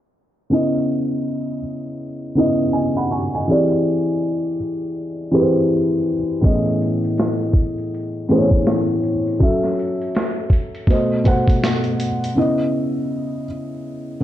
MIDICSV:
0, 0, Header, 1, 3, 480
1, 0, Start_track
1, 0, Key_signature, 4, "minor"
1, 0, Tempo, 740741
1, 332, Time_signature, 4, 2, 24, 8
1, 9224, End_track
2, 0, Start_track
2, 0, Title_t, "Felt piano"
2, 0, Program_c, 0, 0
2, 321, Note_on_c, 0, 49, 73
2, 329, Note_on_c, 0, 59, 64
2, 336, Note_on_c, 0, 64, 66
2, 345, Note_on_c, 0, 75, 81
2, 464, Control_c, 0, 64, 127
2, 1023, Note_off_c, 0, 49, 0
2, 1027, Note_off_c, 0, 59, 0
2, 1030, Note_off_c, 0, 64, 0
2, 1035, Note_off_c, 0, 75, 0
2, 1524, Note_on_c, 0, 49, 79
2, 1533, Note_on_c, 0, 59, 74
2, 1542, Note_on_c, 0, 64, 72
2, 1549, Note_on_c, 0, 75, 87
2, 1765, Note_off_c, 0, 75, 0
2, 1770, Note_on_c, 0, 80, 61
2, 1775, Note_on_c, 0, 75, 54
2, 1911, Note_off_c, 0, 80, 0
2, 1914, Note_off_c, 0, 75, 0
2, 1922, Note_on_c, 0, 83, 65
2, 1924, Note_on_c, 0, 78, 59
2, 2009, Note_off_c, 0, 83, 0
2, 2010, Note_off_c, 0, 78, 0
2, 2017, Note_on_c, 0, 85, 57
2, 2022, Note_on_c, 0, 80, 52
2, 2053, Note_off_c, 0, 49, 0
2, 2058, Note_off_c, 0, 59, 0
2, 2062, Note_off_c, 0, 64, 0
2, 2155, Note_off_c, 0, 85, 0
2, 2158, Note_off_c, 0, 80, 0
2, 2169, Note_on_c, 0, 80, 58
2, 2172, Note_on_c, 0, 75, 42
2, 2251, Note_on_c, 0, 52, 72
2, 2259, Note_on_c, 0, 60, 69
2, 2260, Control_c, 0, 64, 0
2, 2264, Note_on_c, 0, 67, 61
2, 2272, Note_on_c, 0, 68, 65
2, 2275, Note_on_c, 0, 74, 90
2, 2361, Control_c, 0, 64, 127
2, 2393, Note_off_c, 0, 80, 0
2, 2394, Note_off_c, 0, 75, 0
2, 2948, Note_off_c, 0, 52, 0
2, 2952, Note_off_c, 0, 60, 0
2, 2954, Note_off_c, 0, 67, 0
2, 2958, Note_off_c, 0, 68, 0
2, 2960, Note_off_c, 0, 74, 0
2, 3444, Note_on_c, 0, 52, 83
2, 3447, Note_on_c, 0, 60, 70
2, 3454, Note_on_c, 0, 67, 79
2, 3461, Note_on_c, 0, 68, 69
2, 3465, Note_on_c, 0, 71, 70
2, 3509, Note_on_c, 0, 72, 78
2, 3511, Note_off_c, 0, 71, 0
2, 3973, Note_off_c, 0, 52, 0
2, 3975, Note_off_c, 0, 60, 0
2, 3978, Note_off_c, 0, 67, 0
2, 3982, Note_off_c, 0, 68, 0
2, 4006, Note_off_c, 0, 72, 0
2, 4155, Note_on_c, 0, 45, 80
2, 4156, Note_on_c, 0, 52, 66
2, 4163, Note_on_c, 0, 59, 68
2, 4167, Note_on_c, 0, 61, 62
2, 4173, Note_on_c, 0, 68, 66
2, 4177, Note_on_c, 0, 75, 92
2, 4181, Control_c, 0, 64, 0
2, 4280, Control_c, 0, 64, 127
2, 4860, Note_off_c, 0, 45, 0
2, 4860, Note_off_c, 0, 52, 0
2, 4864, Note_off_c, 0, 59, 0
2, 4866, Note_off_c, 0, 61, 0
2, 4869, Note_off_c, 0, 68, 0
2, 4871, Note_off_c, 0, 75, 0
2, 5368, Note_on_c, 0, 45, 76
2, 5371, Note_on_c, 0, 52, 74
2, 5375, Note_on_c, 0, 59, 67
2, 5380, Note_on_c, 0, 61, 74
2, 5385, Note_on_c, 0, 68, 81
2, 5390, Note_on_c, 0, 72, 69
2, 5432, Note_on_c, 0, 73, 90
2, 5433, Note_off_c, 0, 72, 0
2, 5895, Note_off_c, 0, 45, 0
2, 5897, Note_off_c, 0, 52, 0
2, 5899, Note_off_c, 0, 59, 0
2, 5901, Note_off_c, 0, 61, 0
2, 5904, Note_off_c, 0, 68, 0
2, 5928, Note_off_c, 0, 73, 0
2, 6086, Note_on_c, 0, 54, 73
2, 6091, Note_on_c, 0, 61, 66
2, 6101, Control_c, 0, 64, 0
2, 6101, Note_on_c, 0, 69, 66
2, 6107, Note_on_c, 0, 76, 86
2, 6214, Control_c, 0, 64, 127
2, 6785, Note_off_c, 0, 54, 0
2, 6788, Note_off_c, 0, 61, 0
2, 6793, Note_off_c, 0, 69, 0
2, 6796, Note_off_c, 0, 76, 0
2, 7048, Note_on_c, 0, 47, 71
2, 7053, Note_on_c, 0, 57, 72
2, 7060, Control_c, 0, 64, 0
2, 7065, Note_on_c, 0, 72, 68
2, 7069, Note_on_c, 0, 75, 79
2, 7189, Control_c, 0, 64, 127
2, 7253, Note_off_c, 0, 47, 0
2, 7255, Note_off_c, 0, 57, 0
2, 7262, Note_off_c, 0, 72, 0
2, 7264, Note_off_c, 0, 75, 0
2, 7284, Note_on_c, 0, 47, 78
2, 7290, Note_on_c, 0, 57, 67
2, 7296, Note_on_c, 0, 72, 76
2, 7306, Note_on_c, 0, 78, 86
2, 7814, Note_off_c, 0, 47, 0
2, 7816, Note_off_c, 0, 57, 0
2, 7819, Note_off_c, 0, 72, 0
2, 7824, Note_off_c, 0, 78, 0
2, 8005, Note_on_c, 0, 49, 69
2, 8012, Note_on_c, 0, 59, 67
2, 8019, Note_on_c, 0, 64, 67
2, 8022, Control_c, 0, 64, 0
2, 8028, Note_on_c, 0, 75, 79
2, 8137, Control_c, 0, 64, 127
2, 8705, Note_off_c, 0, 49, 0
2, 8708, Note_off_c, 0, 59, 0
2, 8712, Note_off_c, 0, 64, 0
2, 8716, Note_off_c, 0, 75, 0
2, 9224, End_track
3, 0, Start_track
3, 0, Title_t, "Drums"
3, 4172, Note_on_c, 9, 36, 121
3, 4179, Note_on_c, 9, 42, 80
3, 4237, Note_off_c, 9, 36, 0
3, 4244, Note_off_c, 9, 42, 0
3, 4419, Note_on_c, 9, 42, 50
3, 4484, Note_off_c, 9, 42, 0
3, 4563, Note_on_c, 9, 42, 41
3, 4628, Note_off_c, 9, 42, 0
3, 4652, Note_on_c, 9, 42, 74
3, 4662, Note_on_c, 9, 38, 105
3, 4717, Note_off_c, 9, 42, 0
3, 4727, Note_off_c, 9, 38, 0
3, 4806, Note_on_c, 9, 42, 32
3, 4870, Note_off_c, 9, 42, 0
3, 4882, Note_on_c, 9, 36, 76
3, 4900, Note_on_c, 9, 42, 60
3, 4947, Note_off_c, 9, 36, 0
3, 4965, Note_off_c, 9, 42, 0
3, 5043, Note_on_c, 9, 42, 44
3, 5107, Note_off_c, 9, 42, 0
3, 5147, Note_on_c, 9, 42, 78
3, 5212, Note_off_c, 9, 42, 0
3, 5373, Note_on_c, 9, 42, 54
3, 5437, Note_off_c, 9, 42, 0
3, 5516, Note_on_c, 9, 36, 83
3, 5530, Note_on_c, 9, 42, 48
3, 5580, Note_off_c, 9, 36, 0
3, 5594, Note_off_c, 9, 42, 0
3, 5618, Note_on_c, 9, 38, 94
3, 5624, Note_on_c, 9, 42, 72
3, 5682, Note_off_c, 9, 38, 0
3, 5689, Note_off_c, 9, 42, 0
3, 5754, Note_on_c, 9, 42, 31
3, 5819, Note_off_c, 9, 42, 0
3, 5855, Note_on_c, 9, 42, 58
3, 5920, Note_off_c, 9, 42, 0
3, 6010, Note_on_c, 9, 42, 45
3, 6074, Note_off_c, 9, 42, 0
3, 6094, Note_on_c, 9, 36, 109
3, 6102, Note_on_c, 9, 42, 82
3, 6159, Note_off_c, 9, 36, 0
3, 6166, Note_off_c, 9, 42, 0
3, 6246, Note_on_c, 9, 38, 33
3, 6311, Note_off_c, 9, 38, 0
3, 6346, Note_on_c, 9, 42, 53
3, 6411, Note_off_c, 9, 42, 0
3, 6490, Note_on_c, 9, 42, 37
3, 6555, Note_off_c, 9, 42, 0
3, 6576, Note_on_c, 9, 42, 76
3, 6587, Note_on_c, 9, 38, 101
3, 6641, Note_off_c, 9, 42, 0
3, 6651, Note_off_c, 9, 38, 0
3, 6803, Note_on_c, 9, 36, 81
3, 6823, Note_on_c, 9, 42, 64
3, 6868, Note_off_c, 9, 36, 0
3, 6888, Note_off_c, 9, 42, 0
3, 6963, Note_on_c, 9, 42, 44
3, 7028, Note_off_c, 9, 42, 0
3, 7045, Note_on_c, 9, 36, 82
3, 7065, Note_on_c, 9, 42, 67
3, 7110, Note_off_c, 9, 36, 0
3, 7130, Note_off_c, 9, 42, 0
3, 7291, Note_on_c, 9, 42, 56
3, 7300, Note_on_c, 9, 36, 84
3, 7356, Note_off_c, 9, 42, 0
3, 7364, Note_off_c, 9, 36, 0
3, 7436, Note_on_c, 9, 36, 82
3, 7449, Note_on_c, 9, 42, 55
3, 7501, Note_off_c, 9, 36, 0
3, 7514, Note_off_c, 9, 42, 0
3, 7540, Note_on_c, 9, 38, 91
3, 7546, Note_on_c, 9, 42, 76
3, 7605, Note_off_c, 9, 38, 0
3, 7611, Note_off_c, 9, 42, 0
3, 7671, Note_on_c, 9, 42, 31
3, 7736, Note_off_c, 9, 42, 0
3, 7774, Note_on_c, 9, 42, 65
3, 7839, Note_off_c, 9, 42, 0
3, 7931, Note_on_c, 9, 42, 47
3, 7996, Note_off_c, 9, 42, 0
3, 9224, End_track
0, 0, End_of_file